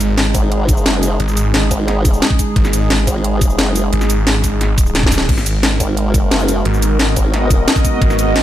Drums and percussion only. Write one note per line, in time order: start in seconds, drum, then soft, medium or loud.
0.01 closed hi-hat medium
0.01 shaker medium
0.18 snare loud
0.18 closed hi-hat medium
0.35 kick medium
0.35 closed hi-hat medium
0.35 shaker medium
0.52 closed hi-hat medium
0.69 kick loud
0.69 closed hi-hat loud
0.69 shaker medium
0.77 shaker soft
0.86 snare loud
0.86 closed hi-hat medium
1.03 closed hi-hat medium
1.03 shaker medium
1.20 closed hi-hat medium
1.28 shaker soft
1.37 closed hi-hat loud
1.37 shaker medium
1.54 snare loud
1.54 closed hi-hat medium
1.71 kick medium
1.71 closed hi-hat medium
1.71 shaker medium
1.88 snare soft
1.88 closed hi-hat medium
2.05 kick loud
2.05 closed hi-hat loud
2.05 shaker medium
2.14 shaker soft
2.22 snare loud
2.22 closed hi-hat medium
2.31 kick loud
2.39 kick medium
2.39 closed hi-hat medium
2.39 shaker medium
2.56 kick loud
2.56 closed hi-hat medium
2.65 snare soft
2.65 shaker soft
2.73 closed hi-hat loud
2.73 shaker medium
2.90 snare loud
2.90 closed hi-hat medium
3.07 kick medium
3.07 closed hi-hat medium
3.07 shaker medium
3.24 closed hi-hat medium
3.41 kick loud
3.41 closed hi-hat loud
3.41 shaker medium
3.50 shaker soft
3.59 snare loud
3.59 closed hi-hat medium
3.76 closed hi-hat loud
3.76 shaker medium
3.93 closed hi-hat medium
4.01 snare soft
4.01 shaker soft
4.10 closed hi-hat loud
4.10 shaker medium
4.27 snare loud
4.27 closed hi-hat medium
4.44 kick medium
4.44 closed hi-hat loud
4.44 shaker medium
4.61 snare soft
4.61 closed hi-hat medium
4.78 kick loud
4.78 closed hi-hat loud
4.78 shaker medium
4.86 shaker soft
4.95 snare medium
4.95 closed hi-hat medium
5.03 kick loud
5.03 snare medium
5.12 kick medium
5.12 closed hi-hat loud
5.12 shaker medium
5.18 snare loud
5.29 kick loud
5.29 closed hi-hat medium
5.29 crash loud
5.38 snare soft
5.38 shaker soft
5.46 closed hi-hat loud
5.46 shaker medium
5.63 snare loud
5.63 closed hi-hat medium
5.80 kick medium
5.80 closed hi-hat medium
5.80 shaker medium
5.97 closed hi-hat medium
6.14 kick loud
6.14 closed hi-hat loud
6.14 shaker medium
6.31 snare loud
6.31 closed hi-hat medium
6.40 shaker soft
6.48 closed hi-hat loud
6.48 shaker medium
6.65 closed hi-hat medium
6.74 shaker soft
6.82 closed hi-hat loud
6.82 shaker medium
6.99 snare loud
6.99 closed hi-hat medium
7.16 kick medium
7.16 closed hi-hat medium
7.16 shaker medium
7.34 snare soft
7.34 closed hi-hat medium
7.50 kick loud
7.50 closed hi-hat loud
7.50 shaker medium
7.68 snare loud
7.68 closed hi-hat medium
7.76 kick loud
7.76 shaker soft
7.85 kick medium
7.85 closed hi-hat loud
7.85 shaker medium
8.02 kick loud
8.02 closed hi-hat medium
8.10 snare soft
8.10 shaker soft
8.19 closed hi-hat loud
8.19 shaker medium
8.36 snare loud
8.36 closed hi-hat medium